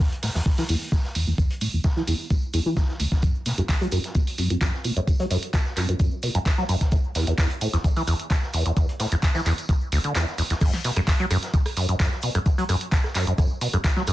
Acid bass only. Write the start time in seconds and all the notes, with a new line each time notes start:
0.23 A2
0.35 E2
0.46 F#2
0.58 E3
0.69 E2
0.92 A2
1.15 E2
1.27 E2
1.38 E2
1.61 A2
1.73 E2
1.84 F#2
1.96 E3
2.07 E2
2.31 A2
2.54 E2
2.66 E3
2.77 E2
3.00 D2
3.12 E2
3.23 F#2
3.46 B2
3.58 F#2
3.69 G2
3.81 F#3
3.92 F#2
4.15 B2
4.38 F#2
4.50 F#2
4.61 F#2
4.84 B2
4.97 F#2
5.08 G2
5.20 F#3
5.31 F#2
5.54 B2
5.77 F#2
5.89 F#2
6.00 F#2
6.23 B2
6.35 F#2
6.46 G2
6.58 F#3
6.69 F#2
6.92 A2
7.15 E2
7.27 E2
7.38 E2
7.61 A2
7.73 E2
7.84 F#2
7.96 E3
8.07 E2
8.31 A2
8.54 E2
8.66 E2
8.77 E2
9.00 A2
9.12 E2
9.23 F#2
9.35 E3
9.46 E2
9.69 A2
9.92 D2
10.04 D3
10.15 E2
10.38 E2
10.50 E2
10.61 F#2
10.84 B2
10.97 F#2
11.08 G2
11.20 F#3
11.31 F#2
11.54 B2
11.77 F#2
11.89 F#2
12.00 F#2
12.23 B2
12.35 F#2
12.46 G2
12.58 F#3
12.69 F#2
12.92 B2
13.15 F#2
13.27 F#2
13.38 F#2
13.61 B2
13.73 F#2
13.84 G2
13.97 F#3
14.08 F#2